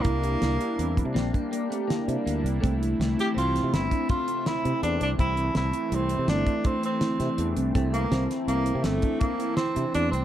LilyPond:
<<
  \new Staff \with { instrumentName = "Tenor saxophone" } { \time 7/4 \key a \phrygian \tempo 4 = 164 bes2. r1 | r4. g'8 f'4 e'4 f'4 e'4 d'8 d'8 | e'4 e'4 c'4 d'4 c'8 c'2 r8 | r8 bes4 r8 bes4 a4 bes4 c'4 d'8 c'8 | }
  \new Staff \with { instrumentName = "Tine electric piano" } { \time 7/4 \key a \phrygian e'8 g'8 e'8 g'8 c'4 c'8 d'4 c'8 e'8 e'4 c'8 | c'8 e'8 c'8 e'8 c'4 c'8 d'4 c'8 e'8 e'4 c'8 | c'8 e'8 c'8 e'8 c'4 c'8 d'4 c'8 e'8 e'4 c'8 | c'8 e'8 c'8 e'8 c'4 c'8 d'4 c'8 e'8 e'4 c'8 | }
  \new Staff \with { instrumentName = "Analog synth pad" } { \time 7/4 \key a \phrygian <g bes d' e'>8. r16 <g bes d' e'>4~ <g bes d' e'>16 r16 <g bes d' g'>8. r16 <g bes d' g'>4. r16 <g bes d' e'>4~ <g bes d' e'>16 r16 <g bes d' e'>16 | <e a c' e'>8. r16 <e a c' e'>4~ <e a c' e'>16 r16 <e a c' e'>8. r16 <c a c' e''>4. r16 <e a c' e'>4~ <e a c' e'>16 r16 <e a c' e'>16 | <e a c' e'>8. r16 <e a c' e'>4~ <e a c' e'>16 r16 <e a c' e'>8. r16 <e a c' e'>4. r16 <e a c' d'>4~ <e a c' d'>16 r16 <e a c' e'>16 | <e a c' e'>8. r16 <e a c' e'>4~ <e a c' e'>16 r16 <e a c' e'>8. r16 <e c' e' a'>4. r16 <e a c' d'>4~ <e a c' d'>16 r16 <e a c' d'>16 | }
  \new Staff \with { instrumentName = "Clean electric guitar" } { \time 7/4 \key a \phrygian d'2. c'8 bes8 bes8 a8 bes4 bes4 | a2 c'1~ c'4~ | c'2. a1 | a4 c'1. | }
  \new Staff \with { instrumentName = "Fretless electric bass" } { \clef bass \time 7/4 \key a \phrygian c,4 c,8 r8 e,8. c16 bes,,8 r2 c16 r16 d,8 c,8 | c,4 c,8 r8 c,8. c16 g,,8 r2 c16 r16 e,8 c,8 | c,4 c,8 r8 c,8. c16 g,,8 r2 c16 r16 e,8 c,8 | c,4 c,8 r8 c,8. c16 g,,8 r2 c16 r16 e,8 c,8 | }
  \new DrumStaff \with { instrumentName = "Drums" } \drummode { \time 7/4 <hh bd>8 hh8 <hh sn>8 hh8 hh8 <hh bd>8 <hh sn>8 <hh bd>8 hh8 hh8 <hh sn>8 hh8 hh8 hh8 | <hh bd>8 hh8 <hh sn>8 <hh sn>8 hh8 <hh sn>8 <hh sn>8 <hh bd>8 <hh bd>8 hh8 <hh sn>8 hh8 hh8 hh8 | <hh bd>8 hh8 <hh sn>8 hh8 hh8 hh8 <hh sn>8 <hh bd>8 <hh bd>8 hh8 <hh sn>8 <hh sn>8 hh8 hh8 | <hh bd>8 hh8 <hh sn>8 <hh sn>8 hh8 hh8 <hh sn>8 <hh bd>8 <hh bd>8 hh8 <hh sn>8 hh8 hh8 hh8 | }
>>